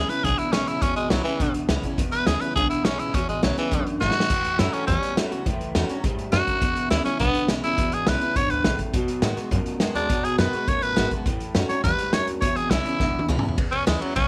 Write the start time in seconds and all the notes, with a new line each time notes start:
Already playing: E2 C#3 G#4
0.09 C#4 E4 B4, muted upright bass stroke, closed hi-hat
0.24 B1 E2 B2 D3 G#4, kick, closed hi-hat
0.38 E4, muted upright bass stroke, closed hi-hat
0.52 B1 E2 C#3 E3 G#3 C#4 E4, snare, closed hi-hat
0.67 G#1 C#4 E4, closed hi-hat
0.81 E1 E2 B2 C#4, kick, closed hi-hat
0.96 G#1 G#3, closed hi-hat
1.10 B1 E2 C#3 E3 F#3 G#3 C#4 E4, snare, closed hi-hat
1.24 E3 C#4 E4, muted upright bass stroke, closed hi-hat
1.40 C#2 E2 B2 D3, kick, closed hi-hat
1.54 D2, closed hi-hat
1.69 C#2 E2 C#3 E3 G#3 C#4 E4, snare, closed hi-hat
1.83 C#4 E4, muted upright bass stroke, kick, closed hi-hat
1.98 E1 E2 B2, kick, closed hi-hat
2.12 B1 B4, closed hi-hat
2.27 D2 E2 C#3 E3 G#3 C#4 E4 G#4, snare, closed hi-hat
2.41 C#4 E4 B4, muted upright bass stroke, closed hi-hat
2.56 B1 E2 B2 D3 G#4, kick, closed hi-hat
2.70 E4, muted upright bass stroke, closed hi-hat
2.85 B1 E2 C#3 E3 G#3 C#4 E4, snare, closed hi-hat
2.99 G#1 E4, closed hi-hat
3.14 E1 E2 B2 C#4, kick, closed hi-hat
3.29 G#1 G#3, closed hi-hat
3.42 B1 E2 C#3 E3 F#3 G#3 C#4 E4, snare, closed hi-hat
3.58 E3 C#4 E4, muted upright bass stroke, snare, closed hi-hat
3.71 C#2 E2 F#2 D3, kick, closed hi-hat
3.86 D2, closed hi-hat
4.01 G#1 E2 G#2 C#3 F#4, snare
4.11 snare
4.16 muted upright bass stroke
4.20 snare
4.30 A1 A2 E3, kick, closed hi-hat, crash
4.44 E2, closed hi-hat
4.59 F#2 A2 E3 F#3 A3 C#4 E4 F#4, snare, closed hi-hat
4.73 C#4, muted upright bass stroke, closed hi-hat
4.87 E2 A2 G3 C#4, kick, closed hi-hat
5.03 muted upright bass stroke, closed hi-hat
5.17 E2 A2 E3 F#3 A3 C#4 F#4, snare, closed hi-hat
5.31 C#2 C#4 F#4, closed hi-hat
5.46 A1 A2 E3, kick, closed hi-hat
5.60 C#2, closed hi-hat
5.75 E2 A2 E3 F#3 A3 C#4 F#4, snare, closed hi-hat
5.89 C#4 F#4, muted upright bass stroke, snare, closed hi-hat
6.04 F#2 G#2 A2 G3, kick, closed hi-hat
6.18 F#2, closed hi-hat
6.32 F#2 A2 F#3 F#4, snare, closed hi-hat
6.47 muted upright bass stroke, kick, closed hi-hat
6.61 E1 E2 B2, kick, closed hi-hat
6.76 B1, closed hi-hat
6.90 D2 E2 C#3 E3 G#3 C#4 E4, snare, closed hi-hat
7.05 C#4 E4, muted upright bass stroke, snare, closed hi-hat
7.19 B1 E2 B2 D3 B3, kick, closed hi-hat
7.34 muted upright bass stroke, closed hi-hat
7.48 B1 E2 C#3 E3 G#3 C#4 E4, snare, closed hi-hat
7.63 G#1 C#4 E4, closed hi-hat
7.78 E1 E2 B2, kick, closed hi-hat
7.92 G#1 G#4, closed hi-hat
8.07 B1 E2 C#3 E3 G#3 C#4 E4 B4, snare, closed hi-hat
8.21 C#4 E4, muted upright bass stroke, closed hi-hat
8.36 C#2 E2 G#2 D3 C#5, kick, closed hi-hat
8.50 D2 B4, closed hi-hat
8.64 A#1 E2 A2 C#3, snare, closed hi-hat
8.79 muted upright bass stroke, kick, closed hi-hat
8.93 B1 B2 F#3, kick, closed hi-hat
9.08 F#2, closed hi-hat
9.22 A2 B2 D#3 G#3 B3 F#4, snare, closed hi-hat
9.37 B3 F#4, muted upright bass stroke, snare, closed hi-hat
9.51 F#2 B2 A3, kick, closed hi-hat
9.66 muted upright bass stroke, closed hi-hat
9.80 F#2 B2 D#3 G#3 B3 F#4, snare, closed hi-hat
9.95 D#2 B3 D4 F#4, closed hi-hat
10.09 B1 B2 F#3, kick, closed hi-hat
10.24 D#2 G#4, closed hi-hat
10.38 F#2 B2 D#3 G#3 B3 F#4 B4, snare, closed hi-hat
10.53 B3 F#4, muted upright bass stroke, closed hi-hat
10.67 F#2 G#2 B2 A3 C#5, kick, closed hi-hat
10.82 A2 B4, closed hi-hat
10.96 G#1 B2 D#3 G#3 B3 F#4, snare, closed hi-hat
11.11 B3 F#4, muted upright bass stroke, kick, closed hi-hat
11.26 A1 A2 E3, kick, closed hi-hat
11.40 E2, closed hi-hat
11.55 F#2 A2 E3 F#3 A3 C#4 F#4, snare, closed hi-hat
11.69 C#4 F#4 C#5, muted upright bass stroke, snare, closed hi-hat
11.84 E2 G#2 A2 G3 B4, kick, closed hi-hat
11.98 muted upright bass stroke, closed hi-hat
12.12 E2 F#2 A2 F#3 C#5, snare, closed hi-hat
12.27 D2, closed hi-hat
12.41 E1 E2 B2 C#5, kick, closed hi-hat
12.56 G#1 G#4, closed hi-hat
12.70 B1 E2 C#3 E3 G#3 C#4 E4, snare, closed hi-hat
12.85 C#4 E4, muted upright bass stroke, closed hi-hat
12.99 C#2 E2 B2 D3, kick, snare
13.14 D2
13.19 high tom
13.28 C#2 E2 C#3 E3 G#3 C#4 E4, mid tom
13.39 mid tom
13.43 C#4 E4, muted upright bass stroke
13.48 floor tom
13.58 E1 E2, kick, ride
13.71 B1 C#4, ride
13.87 D2 E3 G#3 C#4 E4, snare, ride
14.01 F#3 C#4 E4, muted upright bass stroke, ride
14.16 B1 B2 C#4, kick, ride